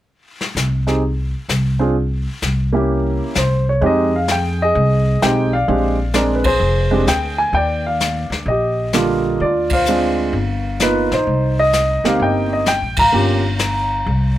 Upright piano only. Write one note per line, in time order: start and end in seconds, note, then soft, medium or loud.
0.87 1.01 C4 soft
0.87 1.01 D#4 soft
0.87 1.01 G4 soft
0.87 1.01 G#4 medium
1.79 1.94 C4 medium
1.79 1.94 D4 medium
1.79 1.94 F4 medium
1.79 1.95 G#4 medium
2.72 3.32 A#3 medium
2.72 3.33 C#4 medium
2.72 3.33 E4 medium
2.72 3.33 G4 medium
3.38 3.65 C5 medium
3.69 3.84 C#5 medium
3.81 4.10 G#3 medium
3.81 4.10 C4 medium
3.81 4.10 D#4 medium
3.81 4.11 G4 medium
3.86 4.62 G#4 medium
3.86 4.13 D#5 medium
4.16 4.31 F5 medium
4.32 4.62 G5 medium
4.62 5.51 G#4 medium
4.62 5.25 D#5 medium
5.22 5.50 G#3 medium
5.22 5.50 C4 soft
5.22 5.50 D#4 soft
5.22 5.51 G4 medium
5.22 5.54 G5 medium
5.53 6.13 D5 medium
5.53 6.11 F5 medium
5.68 5.96 G#3 medium
5.68 5.96 C4 soft
5.68 5.96 D4 soft
5.68 5.96 G4 medium
6.14 6.42 G#3 medium
6.14 6.42 C4 medium
6.14 6.43 D4 medium
6.14 6.43 A#4 medium
6.14 6.35 D5 medium
6.35 6.45 B4 medium
6.45 7.35 G#4 medium
6.45 7.04 C5 medium
6.91 7.06 G#3 medium
6.91 7.06 C4 medium
6.91 7.06 D4 medium
6.91 7.06 G4 medium
7.08 7.37 G5 medium
7.38 7.55 G#5 medium
7.54 8.45 D5 medium
7.54 7.83 G5 medium
7.86 8.29 F5 medium
8.48 9.38 G4 soft
8.48 9.44 D#5 medium
8.94 9.41 D3 medium
8.94 9.40 G3 medium
8.94 9.41 A#3 medium
8.94 9.41 F4 medium
9.41 9.88 F4 medium
9.41 9.73 D5 medium
9.73 10.31 C5 medium
9.73 10.84 F5 medium
9.88 10.34 G#3 medium
9.88 10.35 C4 soft
9.88 10.34 D4 medium
9.88 10.35 F4 medium
10.82 11.09 A#3 soft
10.82 11.09 B3 soft
10.82 11.10 D#4 soft
10.82 11.10 F4 soft
10.82 11.10 B4 medium
11.13 12.02 D#4 medium
11.13 11.56 C5 medium
11.59 12.07 D#5 medium
12.05 12.64 A#3 medium
12.05 12.64 C4 medium
12.05 12.64 D#4 medium
12.05 12.64 G4 medium
12.05 12.22 F5 medium
12.22 12.52 D#5 medium
12.22 12.50 G5 medium
12.53 12.68 D#5 medium
12.68 12.96 G5 medium
12.99 14.04 F5 medium
12.99 14.34 A#5 medium
13.12 13.41 A#3 medium
13.12 13.41 C#4 soft
13.12 13.41 F4 soft
13.12 13.42 G4 medium